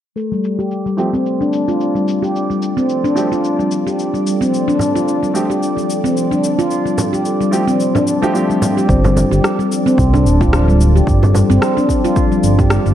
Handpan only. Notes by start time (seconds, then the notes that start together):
0.32 G3
0.59 G4
0.86 G3
1.13 C4
1.41 D4
1.68 F4
1.95 G3
2.22 G4
2.50 G3
2.77 C4
3.04 D4
3.32 F4
3.59 G3
3.87 G4
4.14 G3
4.41 C4
4.68 D4
4.95 F4
5.23 G3
5.50 G4
5.77 G3
6.04 C4
6.31 D4
6.59 F4
6.86 G3
7.13 G4
7.41 G3
7.67 C4
7.95 D4
8.23 F4
8.50 G3
8.77 G4
9.05 G3
9.31 G4
9.59 G3
9.86 C4
10.14 D4
10.41 F4
10.68 G3
10.96 G4
11.23 G3
11.50 C4
11.77 D4
12.04 F4
12.32 G3
12.59 G4
12.86 G3